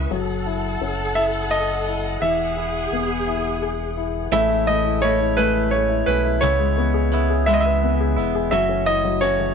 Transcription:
Already playing: grand piano C#3 G#3 E4
0.10 sub bass F#1, grand piano F#3, string section A4 F#5
0.46 grand piano E4
0.80 sub bass F#1, grand piano C#4
1.15 grand piano E4 E5
1.51 grand piano A4 D#5
1.87 grand piano E4
2.20 sub bass E1, grand piano E3 E5, string section G#4
2.57 grand piano E4
2.91 sub bass E1, grand piano B3
3.27 grand piano E4
3.62 grand piano G#4
3.97 grand piano E4
4.31 sub bass A1, clean electric guitar A2 E3 G#3 C#4 E4, grand piano A3 E5
4.50 grand piano E4
4.67 grand piano A3 D#5
4.84 grand piano E4
5.02 clean electric guitar E3 G#3 C#4 E4, grand piano A3 C#5
5.20 grand piano E4
5.37 clean electric guitar A2 E3 G#3 C#4 E4, grand piano A3 B4
5.55 grand piano E4
5.71 grand piano A3 C#5
5.89 grand piano E4
6.06 sub bass B1, clean electric guitar G#3 C#4 E4, grand piano A3 B4
6.25 grand piano E4
6.41 sub bass C#2, clean electric guitar C#3 E3 G#3 B3 E4, grand piano C#3 C#5
6.59 grand piano G#3
6.77 grand piano B3
6.94 grand piano G#4
7.12 clean electric guitar E3 G#3 B3 E4, grand piano E4
7.30 grand piano G#4
7.46 clean electric guitar C#3 E3 G#3 B3 E4, grand piano G#3 E5
7.54 grand piano D#5
7.61 grand piano E5
7.65 grand piano B4
7.83 grand piano B3
8.00 grand piano G#4
8.16 sub bass E1, clean electric guitar G#3 B3 E4, grand piano E4
8.35 grand piano G#4
8.51 sub bass F#1, clean electric guitar F#2 C#3 E3 A3 C#4 F#4, grand piano F#3 E5
8.69 grand piano C#4
8.86 grand piano E4 D#5
9.05 grand piano F#3
9.21 clean electric guitar E3 A3 C#4 F#4, grand piano C#4 C#5
9.40 grand piano F#3

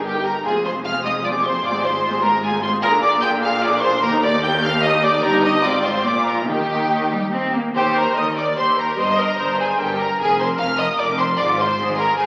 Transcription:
Already playing: double bass section G1, cello section G2
0.04 viola section G4 A#4, violin section G4 G5
0.14 viola section D#4 G4
0.25 viola section G4 A#4, violin section A#4 A#5
0.34 viola section D#4 G4
0.44 double bass section F1, cello section F2, viola section G#3 F4, violin section G#4 G#5
0.54 viola section C4 G#4
0.64 viola section G#3 F4, violin section C5 C6
0.74 viola section C4 G#4
0.84 viola section G#3 F4, violin section F5 F6
0.94 viola section C4 G#4
1.03 viola section G#3 F4, violin section D#5 D#6
1.13 viola section C4 G#4
1.23 viola section G#3 F4, violin section D5 D6
1.32 viola section C4 G#4
1.42 viola section G#3 F4, violin section C5 C6
1.52 viola section C4 G#4
1.62 double bass section G#1, cello section G#2, viola section G#3 F4, violin section D5 D6
1.72 viola section C4 G#4
1.82 viola section G#3 F4, violin section C5 C6
1.92 viola section C4 G#4
2.03 viola section G#3 F4
2.12 viola section C4 G#4
2.22 viola section G#3 F4, violin section A#4 A#5
2.31 viola section C4 G#4
2.41 viola section G#3 F4, violin section G#4 G#5
2.51 viola section C4 G#4
2.61 viola section G#3 F4, violin section C5 C6
2.71 viola section C4 G#4
2.81 double bass section A#1, cello section A#2, viola section F4 G#4, violin section A#4 A#5
2.91 viola section D4 A#4
3.02 viola section F4 G#4, violin section D5 D6
3.11 viola section D4 A#4
3.21 viola section F4 G#4, violin section G5 G6
3.31 viola section D4 A#4
3.41 viola section F4 G#4, violin section F5 F6
3.51 viola section D4 A#4
3.61 viola section F4 G#4, violin section D5 D6
3.72 viola section D4 A#4
3.82 viola section F4 G#4, violin section C5 C6
3.92 viola section D4 A#4
4.02 double bass section D#2, cello section D#2, viola section A#3 G4, violin section A#4 A#5
4.12 viola section D#4 A#4
4.23 viola section A#3 G4, violin section D5 D6
4.33 viola section D#4 A#4
4.43 viola section A#3 G4, violin section G5 G6
4.54 viola section D#4 A#4
4.63 viola section A#3 G4, violin section F5 F6
4.75 viola section D#4 A#4
4.83 viola section A#3 G4, violin section D#5 D#6
4.93 viola section D#4 A#4
5.03 viola section A#3 G4, violin section D5 D6
5.14 viola section D#4 A#4
5.23 double bass section G1, cello section G2, viola section D#4 G4, violin section A#4 A#5
5.44 violin section D#5 D#6
5.64 double bass section G#1, cello section G#2, viola section C4 F4, violin section D5 D6
5.85 violin section C5 C6
6.04 double bass section A#1, cello section A#2, viola section A#3 F4, violin section D5 D6
6.26 violin section A#4 A#5
6.47 double bass section D#2, cello section D#3, viola section A#3 D#4, violin section G4 G5
6.90 cello section D#3
7.11 cello section G3
7.32 cello section C4
7.54 cello section A#3
7.75 cello section D#2, double bass section D#2, violin section G4 G5, viola section C5
7.96 violin section A#4 A#5
8.15 double bass section D#2, cello section D#2, viola section A#4, violin section D#5 D#6
8.36 violin section D5 D6
8.56 double bass section D#2, cello section D#2, viola section G4, violin section C5 C6
8.78 violin section A#4 A#5
8.97 double bass section G1, cello section G2, violin section C5 C6, viola section D#5
9.19 violin section A#4 A#5
9.38 double bass section G1, cello section G2, viola section C5
9.59 violin section G#4 G#5
9.78 double bass section G1, cello section G2, violin section G4 G5, viola section A#4
10.00 violin section A#4 A#5
10.19 double bass section F1, cello section F2, violin section G#4 G#5
10.39 violin section C5 C6
10.58 double bass section F1, cello section F2, violin section F5 F6
10.78 violin section D#5 D#6
10.98 double bass section F1, cello section F2, violin section D5 D6
11.18 violin section C5 C6
11.38 double bass section G#1, cello section G#2, viola section F4, violin section D5 D6
11.59 violin section C5 C6
11.78 double bass section G#1, cello section G#2, viola section G#4
11.98 violin section A#4 A#5
12.17 double bass section G#1, cello section G#2, violin section G#4 G#5, viola section C5

